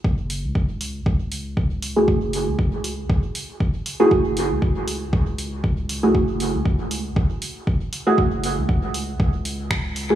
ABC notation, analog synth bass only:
X:1
M:4/4
L:1/16
Q:"Swing 16ths" 1/4=118
K:F#m
V:1 name="Analog synth bass" clef=bass
F,,,3 C,,4- C,, C,,8 | F,,,3 C,,4- C,, z8 | F,,,3 C,,4- C,, C,,8 | F,,,3 C,,4- C,, z8 |
F,,,3 C,,4- C,, C,,8 |]